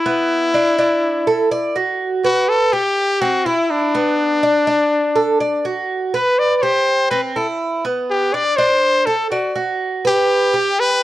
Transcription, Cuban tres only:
0, 0, Header, 1, 2, 480
1, 0, Start_track
1, 0, Key_signature, 1, "major"
1, 0, Tempo, 487409
1, 53, Time_signature, 4, 2, 24, 8
1, 10862, End_track
2, 0, Start_track
2, 0, Title_t, "Cuban tres"
2, 0, Program_c, 0, 25
2, 56, Note_on_c, 0, 59, 82
2, 519, Note_off_c, 0, 59, 0
2, 534, Note_on_c, 0, 62, 76
2, 762, Note_off_c, 0, 62, 0
2, 773, Note_on_c, 0, 62, 80
2, 1237, Note_off_c, 0, 62, 0
2, 1252, Note_on_c, 0, 69, 81
2, 1484, Note_off_c, 0, 69, 0
2, 1491, Note_on_c, 0, 74, 80
2, 1723, Note_off_c, 0, 74, 0
2, 1730, Note_on_c, 0, 66, 76
2, 2195, Note_off_c, 0, 66, 0
2, 2209, Note_on_c, 0, 71, 81
2, 2674, Note_off_c, 0, 71, 0
2, 2688, Note_on_c, 0, 67, 76
2, 3154, Note_off_c, 0, 67, 0
2, 3166, Note_on_c, 0, 60, 98
2, 3400, Note_off_c, 0, 60, 0
2, 3408, Note_on_c, 0, 64, 80
2, 3874, Note_off_c, 0, 64, 0
2, 3887, Note_on_c, 0, 59, 81
2, 4353, Note_off_c, 0, 59, 0
2, 4363, Note_on_c, 0, 62, 76
2, 4588, Note_off_c, 0, 62, 0
2, 4600, Note_on_c, 0, 62, 85
2, 5070, Note_off_c, 0, 62, 0
2, 5077, Note_on_c, 0, 69, 78
2, 5316, Note_off_c, 0, 69, 0
2, 5321, Note_on_c, 0, 74, 77
2, 5558, Note_off_c, 0, 74, 0
2, 5563, Note_on_c, 0, 66, 65
2, 6032, Note_off_c, 0, 66, 0
2, 6046, Note_on_c, 0, 71, 77
2, 6514, Note_off_c, 0, 71, 0
2, 6526, Note_on_c, 0, 67, 73
2, 6995, Note_off_c, 0, 67, 0
2, 7003, Note_on_c, 0, 60, 90
2, 7240, Note_off_c, 0, 60, 0
2, 7250, Note_on_c, 0, 64, 75
2, 7717, Note_off_c, 0, 64, 0
2, 7728, Note_on_c, 0, 59, 76
2, 8197, Note_off_c, 0, 59, 0
2, 8213, Note_on_c, 0, 62, 76
2, 8441, Note_off_c, 0, 62, 0
2, 8452, Note_on_c, 0, 62, 87
2, 8919, Note_off_c, 0, 62, 0
2, 8930, Note_on_c, 0, 69, 80
2, 9165, Note_off_c, 0, 69, 0
2, 9174, Note_on_c, 0, 74, 81
2, 9408, Note_off_c, 0, 74, 0
2, 9409, Note_on_c, 0, 66, 68
2, 9878, Note_off_c, 0, 66, 0
2, 9895, Note_on_c, 0, 71, 75
2, 10361, Note_off_c, 0, 71, 0
2, 10377, Note_on_c, 0, 67, 79
2, 10843, Note_off_c, 0, 67, 0
2, 10862, End_track
0, 0, End_of_file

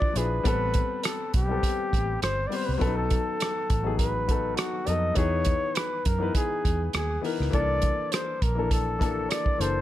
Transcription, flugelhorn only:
0, 0, Header, 1, 2, 480
1, 0, Start_track
1, 0, Tempo, 589971
1, 371, Time_signature, 4, 2, 24, 8
1, 7985, End_track
2, 0, Start_track
2, 0, Title_t, "Flugelhorn"
2, 0, Program_c, 0, 56
2, 0, Note_on_c, 0, 74, 96
2, 141, Note_on_c, 0, 71, 81
2, 153, Note_off_c, 0, 74, 0
2, 376, Note_off_c, 0, 71, 0
2, 387, Note_on_c, 0, 71, 93
2, 854, Note_on_c, 0, 69, 72
2, 866, Note_off_c, 0, 71, 0
2, 1092, Note_off_c, 0, 69, 0
2, 1102, Note_on_c, 0, 67, 83
2, 1783, Note_off_c, 0, 67, 0
2, 1815, Note_on_c, 0, 72, 98
2, 2011, Note_on_c, 0, 74, 74
2, 2024, Note_off_c, 0, 72, 0
2, 2085, Note_on_c, 0, 72, 76
2, 2097, Note_off_c, 0, 74, 0
2, 2161, Note_on_c, 0, 71, 77
2, 2173, Note_off_c, 0, 72, 0
2, 2232, Note_on_c, 0, 72, 63
2, 2244, Note_off_c, 0, 71, 0
2, 2273, Note_on_c, 0, 71, 89
2, 2286, Note_off_c, 0, 72, 0
2, 2409, Note_on_c, 0, 69, 96
2, 2421, Note_off_c, 0, 71, 0
2, 3237, Note_off_c, 0, 69, 0
2, 3242, Note_on_c, 0, 71, 84
2, 3709, Note_on_c, 0, 66, 90
2, 3721, Note_off_c, 0, 71, 0
2, 3963, Note_on_c, 0, 75, 93
2, 3975, Note_off_c, 0, 66, 0
2, 4205, Note_on_c, 0, 73, 99
2, 4217, Note_off_c, 0, 75, 0
2, 4683, Note_on_c, 0, 71, 80
2, 4695, Note_off_c, 0, 73, 0
2, 4930, Note_on_c, 0, 70, 76
2, 4942, Note_off_c, 0, 71, 0
2, 5166, Note_off_c, 0, 70, 0
2, 5171, Note_on_c, 0, 68, 88
2, 5618, Note_off_c, 0, 68, 0
2, 5663, Note_on_c, 0, 68, 81
2, 5879, Note_off_c, 0, 68, 0
2, 6134, Note_on_c, 0, 74, 103
2, 6612, Note_on_c, 0, 72, 80
2, 6624, Note_off_c, 0, 74, 0
2, 6853, Note_on_c, 0, 70, 79
2, 6866, Note_off_c, 0, 72, 0
2, 7091, Note_on_c, 0, 69, 82
2, 7104, Note_off_c, 0, 70, 0
2, 7571, Note_on_c, 0, 74, 100
2, 7583, Note_off_c, 0, 69, 0
2, 7817, Note_on_c, 0, 72, 90
2, 7830, Note_off_c, 0, 74, 0
2, 7985, Note_off_c, 0, 72, 0
2, 7985, End_track
0, 0, End_of_file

